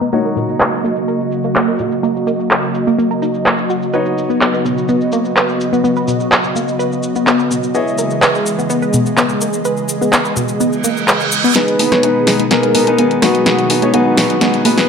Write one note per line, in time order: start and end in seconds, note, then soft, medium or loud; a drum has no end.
0.00 0.07 B3 medium
0.00 0.11 A#5 medium
0.00 cabasa soft
0.12 3.90 C#3 medium
0.12 7.71 F#3 medium
0.12 0.19 A#3 loud
0.12 3.90 A#3 medium
0.12 3.91 D#4 medium
0.12 3.91 F#4 medium
0.12 3.90 F#4 medium
0.12 3.91 A#4 medium
0.12 3.91 C#5 medium
0.12 11.52 D#5 medium
0.12 cabasa medium
0.25 0.34 A#4 medium
0.25 cabasa soft
0.37 0.41 A#2 medium
0.37 cabasa medium
0.49 cabasa soft
0.60 0.67 A#3 medium
0.60 clap loud
0.60 cabasa soft
0.73 cabasa soft
0.84 0.88 A#3 medium
0.84 cabasa medium
0.96 cabasa soft
1.08 1.15 A#4 medium
1.08 cabasa soft
1.21 cabasa soft
1.32 cabasa medium
1.44 1.50 A#3 medium
1.44 cabasa soft
1.56 1.62 A#3 loud
1.56 clap loud
1.56 cabasa soft
1.68 1.77 A#4 medium
1.68 cabasa soft
1.79 1.83 A#2 medium
1.79 cabasa loud
1.92 cabasa soft
2.03 2.10 A#3 medium
2.03 cabasa soft
2.16 cabasa soft
2.27 2.31 A#3 medium
2.27 cabasa medium
2.40 cabasa soft
2.50 2.58 A#4 loud
2.50 clap loud
2.50 cabasa medium
2.64 cabasa soft
2.74 cabasa medium
2.87 2.93 A#3 medium
2.87 cabasa soft
2.98 3.05 A#3 loud
2.98 cabasa medium
3.11 3.20 A#4 medium
3.11 cabasa soft
3.22 3.29 D#4 medium
3.22 cabasa medium
3.34 cabasa soft
3.46 3.56 A#3 medium
3.46 clap loud
3.46 cabasa soft
3.58 cabasa soft
3.70 3.77 F#4 medium
3.70 cabasa loud
3.83 cabasa soft
3.93 11.52 C#3 medium
3.93 7.71 B3 medium
3.93 7.72 D#4 medium
3.93 7.72 F#4 medium
3.93 7.71 F#4 medium
3.93 4.00 B4 loud
3.93 7.72 B4 medium
3.93 7.72 C#5 medium
3.93 cabasa soft
4.06 cabasa soft
4.18 cabasa medium
4.30 4.36 B3 medium
4.30 cabasa soft
4.41 4.48 B3 medium
4.41 clap loud
4.41 cabasa medium
4.54 4.63 B4 medium
4.54 cabasa soft
4.65 4.69 B2 medium
4.65 cabasa medium
4.78 cabasa soft
4.89 4.96 B3 medium
4.89 cabasa soft
5.01 cabasa soft
5.12 5.17 A#3 medium
5.12 cabasa medium
5.25 cabasa soft
5.36 5.43 B4 medium
5.36 clap loud
5.36 cabasa medium
5.49 cabasa soft
5.61 cabasa medium
5.73 5.79 B3 medium
5.73 cabasa soft
5.84 5.91 B3 loud
5.84 cabasa medium
5.96 6.06 B4 medium
5.96 cabasa soft
6.08 6.12 B2 medium
6.08 cabasa medium
6.20 cabasa soft
6.32 6.38 B3 medium
6.32 clap loud
6.32 cabasa soft
6.44 cabasa soft
6.56 6.60 A#3 medium
6.56 cabasa medium
6.68 cabasa soft
6.79 6.86 B4 loud
6.79 cabasa medium
6.92 cabasa soft
7.03 cabasa medium
7.16 7.22 B3 medium
7.16 cabasa soft
7.27 7.34 B3 medium
7.27 clap loud
7.27 cabasa soft
7.39 7.49 B4 medium
7.39 cabasa soft
7.51 7.55 B2 medium
7.51 cabasa medium
7.63 cabasa soft
7.75 11.52 E3 medium
7.75 11.52 G#3 medium
7.75 7.81 B3 medium
7.75 11.53 E4 medium
7.75 11.53 G#4 medium
7.75 11.52 G#4 medium
7.75 11.53 C#5 medium
7.75 11.53 D#5 medium
7.75 cabasa soft
7.88 cabasa soft
7.98 8.02 A#3 medium
7.98 cabasa medium
8.10 cabasa soft
8.22 8.29 B4 medium
8.22 clap loud
8.22 cabasa soft
8.35 cabasa soft
8.46 cabasa medium
8.59 8.65 B3 medium
8.59 cabasa soft
8.70 8.77 B3 loud
8.70 cabasa medium
8.82 8.91 B4 medium
8.82 cabasa soft
8.93 8.98 B2 medium
8.93 cabasa medium
9.06 cabasa soft
9.18 9.24 B3 medium
9.18 clap loud
9.18 cabasa soft
9.29 cabasa soft
9.41 9.45 A#3 medium
9.41 cabasa medium
9.53 cabasa soft
9.65 9.72 B4 loud
9.65 cabasa soft
9.77 cabasa soft
9.89 cabasa medium
10.01 10.08 B3 medium
10.01 cabasa soft
10.13 10.19 B3 loud
10.13 clap loud
10.13 cabasa medium
10.25 10.34 B4 medium
10.25 cabasa soft
10.36 10.41 B2 medium
10.36 cabasa medium
10.48 cabasa soft
10.60 10.67 B3 medium
10.60 reverse cymbal medium
10.60 cabasa medium
10.73 cabasa soft
10.84 10.88 A#3 medium
10.84 cabasa medium
10.97 cabasa soft
11.08 11.15 B4 loud
11.08 clap loud
11.08 cabasa medium
11.20 cabasa soft
11.32 cabasa medium
11.44 11.50 B3 medium
11.44 cabasa soft
11.56 14.89 B2 medium
11.56 14.89 D#3 medium
11.56 14.89 G#3 medium
11.56 11.62 B3 medium
11.56 11.76 B3 medium
11.56 11.76 D#4 medium
11.56 14.89 D#4 medium
11.56 11.76 G#4 medium
11.56 13.44 G#4 medium
11.56 12.42 B4 loud
11.56 11.76 B4 medium
11.56 snare soft
11.56 closed hi-hat medium
11.56 riser medium
11.68 closed hi-hat soft
11.79 11.83 A#3 medium
11.79 11.90 B3 medium
11.79 11.90 D#4 medium
11.79 11.90 G#4 medium
11.79 11.90 B4 medium
11.79 open hi-hat loud
11.92 12.02 B3 medium
11.92 12.02 D#4 medium
11.92 12.02 G#4 medium
11.92 12.02 C#5 medium
11.92 cross-stick medium
11.92 snare soft
11.92 closed hi-hat medium
12.03 12.24 B3 medium
12.03 12.24 D#4 medium
12.03 12.24 G#4 medium
12.03 12.10 B4 loud
12.03 12.24 B4 medium
12.03 closed hi-hat medium
12.27 12.42 B3 medium
12.27 12.42 D#4 medium
12.27 12.42 G#4 medium
12.27 12.42 B4 loud
12.27 snare soft
12.27 open hi-hat loud
12.39 12.46 B3 medium
12.39 closed hi-hat medium
12.51 12.57 B3 loud
12.51 12.71 B3 medium
12.51 12.71 D#4 medium
12.51 12.71 G#4 medium
12.51 13.13 A#4 loud
12.51 12.71 B4 medium
12.51 snare medium
12.51 closed hi-hat medium
12.63 12.72 B4 medium
12.63 closed hi-hat soft
12.75 12.79 B2 medium
12.75 12.85 B3 medium
12.75 12.85 D#4 medium
12.75 12.85 G#4 medium
12.75 12.85 B4 medium
12.75 open hi-hat loud
12.87 12.97 B3 medium
12.87 12.97 D#4 medium
12.87 12.97 G#4 medium
12.87 12.97 B4 loud
12.87 closed hi-hat medium
12.98 13.05 B3 medium
12.98 13.19 B3 medium
12.98 13.19 D#4 medium
12.98 13.19 G#4 medium
12.98 13.19 B4 loud
12.98 closed hi-hat medium
13.11 closed hi-hat soft
13.22 13.26 A#3 medium
13.22 13.43 B3 medium
13.22 13.43 D#4 medium
13.22 13.85 F#4 loud
13.22 13.43 G#4 medium
13.22 13.43 B4 loud
13.22 cross-stick medium
13.22 snare medium
13.22 open hi-hat loud
13.35 closed hi-hat soft
13.46 13.67 B3 medium
13.46 13.67 D#4 medium
13.46 14.89 F#4 medium
13.46 13.67 G#4 medium
13.46 13.53 B4 loud
13.46 13.67 B4 medium
13.46 snare medium
13.46 closed hi-hat medium
13.59 closed hi-hat soft
13.70 13.81 B3 medium
13.70 13.81 D#4 medium
13.70 13.81 G#4 medium
13.70 13.81 B4 medium
13.70 open hi-hat loud
13.82 13.88 B3 medium
13.82 13.92 B3 medium
13.82 13.92 D#4 medium
13.82 13.92 G#4 medium
13.82 13.92 C#5 medium
13.82 closed hi-hat medium
13.94 14.14 B3 medium
13.94 14.00 B3 loud
13.94 14.14 D#4 medium
13.94 14.56 F#4 loud
13.94 14.14 G#4 medium
13.94 14.14 B4 medium
13.94 closed hi-hat medium
14.06 14.15 B4 medium
14.17 14.22 B2 medium
14.17 14.32 B3 medium
14.17 14.32 D#4 medium
14.17 14.32 G#4 medium
14.17 14.32 B4 loud
14.17 snare medium
14.17 open hi-hat loud
14.30 closed hi-hat medium
14.41 14.48 B3 medium
14.41 14.62 B3 medium
14.41 14.62 D#4 medium
14.41 14.62 G#4 medium
14.41 14.62 B4 medium
14.41 snare medium
14.41 closed hi-hat medium
14.54 closed hi-hat soft
14.65 14.69 A#3 medium
14.65 14.76 B3 medium
14.65 14.76 D#4 medium
14.65 14.76 G#4 medium
14.65 14.76 B4 loud
14.65 14.89 B4 loud
14.65 open hi-hat loud
14.78 14.87 B3 medium
14.78 14.87 D#4 medium
14.78 14.87 G#4 medium
14.78 14.87 B4 loud
14.78 snare medium
14.78 open hi-hat medium